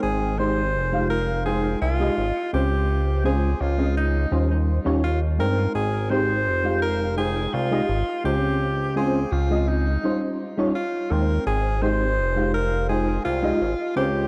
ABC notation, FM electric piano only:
X:1
M:4/4
L:1/16
Q:1/4=84
K:Ab
V:1 name="FM electric piano"
[A,CEcg]2 [A,CEGc] z2 [A,EFGf]3 [A,EFcg]3 [A,EFGe] z2 [A,CDFc]2- | [A,CDFc]2 [A,CDFc] z2 [A,CDFe]3 [G,DEFc]3 [G,DEFd] z2 [A,CEcg]2- | [A,CEcg]2 [A,CEGc] z2 [A,EFGf]3 [A,EFcg]3 [A,EFGe] z2 [A,CDFc]2- | [A,CDFc]2 [A,CDFc] z2 [A,CDFe]3 [G,DEFc]3 [G,DEFd] z2 [A,CEcg]2- |
[A,CEcg]2 [A,CEGc] z2 [A,EFGf]3 [A,EFcg]3 [A,EFGe] z2 [A,CDFc]2 |]